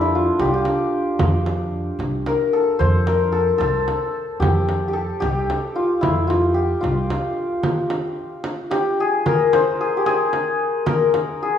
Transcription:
0.00 0.28 F2 medium
0.00 3.66 D4 medium
0.00 0.21 E4 medium
0.00 0.39 G4 medium
0.00 1.49 A4 medium
0.15 0.45 F4 medium
0.39 0.62 C2 medium
0.39 0.53 G4 medium
0.39 frame drum medium
0.45 3.82 F4 medium
0.54 3.67 G4 medium
0.65 frame drum medium
1.19 1.89 F2 medium
1.19 frame drum medium
1.46 frame drum medium
1.99 2.22 C2 medium
1.99 frame drum medium
2.26 2.59 A#4 medium
2.26 frame drum medium
2.53 3.13 A4 medium
2.79 3.49 F2 medium
2.79 5.43 C5 loud
2.79 frame drum medium
3.07 3.38 A#4 medium
3.07 frame drum medium
3.32 3.58 A4 medium
3.58 3.83 C2 medium
3.58 4.93 A4 medium
3.58 frame drum medium
3.88 frame drum medium
4.40 5.10 F2 medium
4.40 4.88 G4 medium
4.40 frame drum medium
4.69 frame drum medium
4.88 5.20 G4 medium
4.93 7.87 A4 medium
5.20 5.45 C2 medium
5.20 6.54 G4 medium
5.20 frame drum medium
5.50 frame drum medium
5.76 6.07 F4 medium
6.01 6.72 F2 medium
6.01 6.33 E4 medium
6.01 frame drum medium
6.27 6.80 F4 medium
6.27 frame drum medium
6.54 8.70 G4 medium
6.81 7.06 C2 medium
6.81 10.17 F4 medium
6.81 frame drum medium
7.10 frame drum medium
7.63 frame drum medium
7.90 frame drum medium
8.44 frame drum medium
8.71 9.06 G4 medium
8.71 frame drum medium
9.00 9.80 G#4 medium
9.26 10.86 A#4 loud
9.26 frame drum medium
9.53 11.58 C5 loud
9.53 frame drum medium
9.81 10.03 G#4 medium
9.97 10.12 G4 medium
10.06 11.42 G#4 medium
10.06 frame drum medium
10.33 frame drum medium
10.86 11.58 A#4 loud
10.86 frame drum medium
11.14 frame drum medium
11.43 11.58 G#4 medium

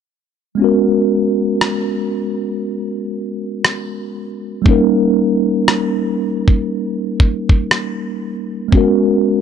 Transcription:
0.55 4.60 G#3 medium
0.55 4.61 B3 medium
0.60 4.62 C#4 medium
0.60 4.63 F#4 medium
0.64 4.64 A#4 medium
1.61 cross-stick loud
3.65 cross-stick loud
4.62 8.67 G3 medium
4.62 8.68 A#3 medium
4.62 kick loud
4.66 8.69 C#4 medium
4.66 8.70 D#4 medium
4.71 8.71 A#4 medium
5.68 cross-stick loud
6.48 kick medium
7.20 kick medium
7.49 kick loud
7.71 cross-stick loud
8.68 9.41 G#3 medium
8.68 9.41 B3 medium
8.72 9.41 C#4 medium
8.72 9.41 F#4 medium
8.72 kick loud
8.77 9.41 A#4 medium

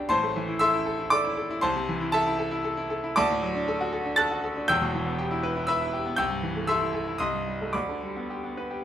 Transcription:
0.00 0.12 B1 medium
0.00 0.12 B2 medium
0.00 0.12 G3 medium
0.00 0.11 B3 medium
0.00 0.12 D4 medium
0.00 0.12 G4 medium
0.00 0.12 B4 medium
0.00 0.11 D5 medium
0.00 0.12 G5 loud
0.00 0.12 B5 loud
0.09 1.59 A1 medium
0.09 1.59 A2 medium
0.09 0.57 C5 medium
0.09 0.57 A5 medium
0.09 0.59 C6 loud
0.23 0.43 A3 medium
0.36 0.56 E3 medium
0.48 0.68 E4 medium
0.59 0.81 A4 medium
0.59 1.08 E5 medium
0.59 1.08 C6 medium
0.59 1.11 E6 loud
0.74 0.94 E4 medium
0.86 1.07 A4 medium
0.99 1.20 E4 medium
1.10 1.32 A4 medium
1.10 1.60 D5 medium
1.10 1.62 D6 loud
1.25 1.45 E4 medium
1.37 1.58 A4 medium
1.50 1.63 E4 medium
1.61 3.14 C2 medium
1.61 2.10 C5 medium
1.61 2.10 A5 medium
1.61 2.13 C6 loud
1.76 1.96 C3 medium
1.89 2.09 E3 medium
2.01 2.21 E4 medium
2.12 2.37 A4 medium
2.12 3.14 E5 medium
2.12 3.15 A5 loud
2.26 2.46 E4 medium
2.39 2.59 A4 medium
2.51 2.72 E4 medium
2.64 2.85 A4 medium
2.77 2.99 E4 medium
2.90 3.12 A4 medium
3.04 3.17 E4 medium
3.16 4.64 D2 loud
3.16 4.13 D5 loud
3.16 4.13 A5 loud
3.16 4.17 D6 loud
3.30 3.50 A2 medium
3.42 3.62 F#3 medium
3.55 3.75 D4 medium
3.68 3.88 A4 medium
3.81 4.00 F#4 medium
3.93 4.13 A4 medium
4.05 4.25 D4 medium
4.16 4.38 A4 medium
4.16 4.64 A5 medium
4.16 4.64 F#6 medium
4.16 4.67 A6 loud
4.31 4.51 F#4 medium
4.44 4.63 A4 medium
4.57 4.69 D4 medium
4.68 6.14 E1 medium
4.68 6.14 E2 medium
4.68 5.64 G5 medium
4.68 5.64 E6 loud
4.68 5.68 G6 loud
4.82 5.01 B2 medium
4.94 5.13 E3 medium
5.06 5.26 B3 medium
5.18 5.38 G4 medium
5.31 5.51 E4 medium
5.43 5.63 B4 medium
5.56 5.76 E4 medium
5.67 5.88 B4 medium
5.67 6.14 E5 medium
5.67 6.14 B5 medium
5.67 6.16 E6 loud
5.81 6.01 E4 medium
5.93 6.13 G4 medium
6.06 6.18 B3 medium
6.16 7.17 C2 medium
6.16 6.64 G5 medium
6.16 6.64 E6 medium
6.16 6.67 G6 loud
6.30 6.50 G2 medium
6.43 6.63 E3 medium
6.56 6.76 A3 medium
6.67 6.89 A4 medium
6.67 7.17 E5 medium
6.67 7.17 C6 medium
6.67 7.20 E6 loud
6.81 7.02 E4 medium
6.95 7.15 A4 medium
7.08 7.20 E4 medium
7.18 7.72 C2 medium
7.18 7.70 D#5 medium
7.18 7.70 C6 medium
7.18 7.73 D#6 medium
7.33 7.55 G2 medium
7.47 7.69 G3 medium
7.62 7.75 A3 medium
7.73 8.80 D2 medium
7.73 8.80 D5 medium
7.73 8.79 B5 medium
7.73 8.83 D6 medium
7.89 8.10 D3 medium
8.02 8.24 G3 medium
8.16 8.38 B3 medium
8.30 8.52 G4 medium
8.44 8.65 B3 medium
8.57 8.79 B4 medium
8.71 8.84 G4 medium

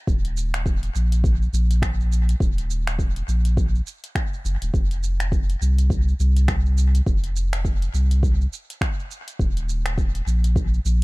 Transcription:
0.07 0.89 D#1 medium
0.07 kick loud
0.07 shaker soft
0.25 closed hi-hat soft
0.25 shaker soft
0.37 shaker medium
0.54 finger snap medium
0.54 closed hi-hat medium
0.54 shaker soft
0.66 kick loud
0.66 shaker soft
0.83 closed hi-hat soft
0.83 shaker soft
0.95 1.48 A#1 medium
0.95 shaker medium
1.12 closed hi-hat medium
1.12 shaker soft
1.24 kick loud
1.24 shaker soft
1.42 shaker soft
1.53 2.35 A#1 medium
1.53 shaker medium
1.71 closed hi-hat soft
1.71 shaker soft
1.82 finger snap medium
1.82 kick loud
1.82 shaker soft
2.00 shaker soft
2.12 shaker medium
2.29 closed hi-hat soft
2.29 shaker soft
2.40 3.22 D#1 medium
2.40 kick loud
2.40 shaker soft
2.58 closed hi-hat soft
2.58 shaker soft
2.71 shaker medium
2.87 finger snap medium
2.87 closed hi-hat soft
2.87 shaker soft
2.99 kick loud
2.99 shaker soft
3.16 closed hi-hat soft
3.16 shaker soft
3.28 3.81 A#1 medium
3.28 shaker medium
3.45 closed hi-hat soft
3.45 shaker soft
3.57 kick loud
3.57 shaker soft
3.75 shaker soft
3.87 shaker medium
4.04 closed hi-hat medium
4.04 shaker soft
4.15 finger snap medium
4.15 kick loud
4.15 shaker soft
4.34 shaker soft
4.45 4.57 F#1 medium
4.45 shaker medium
4.62 4.70 D#1 medium
4.62 closed hi-hat medium
4.62 shaker soft
4.74 5.55 F1 medium
4.74 kick loud
4.74 shaker soft
4.91 closed hi-hat soft
4.91 shaker soft
5.04 shaker medium
5.20 finger snap medium
5.20 closed hi-hat medium
5.20 shaker soft
5.32 kick loud
5.32 shaker soft
5.50 closed hi-hat soft
5.50 shaker soft
5.61 6.14 C2 medium
5.61 shaker medium
5.78 closed hi-hat medium
5.78 shaker soft
5.90 kick medium
5.90 shaker soft
6.08 shaker soft
6.20 7.01 C2 medium
6.20 shaker medium
6.37 closed hi-hat soft
6.37 shaker soft
6.48 finger snap medium
6.48 kick loud
6.48 shaker soft
6.66 shaker soft
6.78 shaker medium
6.95 closed hi-hat soft
6.95 shaker soft
7.07 7.88 F1 loud
7.07 kick loud
7.07 shaker soft
7.24 closed hi-hat soft
7.24 shaker soft
7.36 shaker medium
7.53 finger snap medium
7.53 closed hi-hat medium
7.53 shaker soft
7.65 kick medium
7.65 shaker soft
7.82 closed hi-hat soft
7.82 shaker soft
7.94 8.46 C2 medium
7.94 shaker medium
8.11 closed hi-hat soft
8.11 shaker soft
8.23 kick medium
8.23 shaker soft
8.41 shaker soft
8.53 shaker medium
8.70 closed hi-hat soft
8.70 shaker soft
8.81 finger snap medium
8.81 kick loud
8.81 shaker soft
9.00 shaker soft
9.11 shaker medium
9.28 closed hi-hat medium
9.28 shaker soft
9.39 10.21 D#1 medium
9.39 kick medium
9.39 shaker soft
9.57 closed hi-hat soft
9.57 shaker soft
9.69 shaker medium
9.86 finger snap medium
9.86 closed hi-hat medium
9.86 shaker soft
9.98 kick loud
9.98 shaker soft
10.15 closed hi-hat soft
10.15 shaker soft
10.27 10.79 A#1 medium
10.27 shaker medium
10.44 closed hi-hat medium
10.44 shaker soft
10.56 kick loud
10.56 shaker soft
10.74 shaker soft
10.85 11.04 A#1 medium
10.85 shaker medium

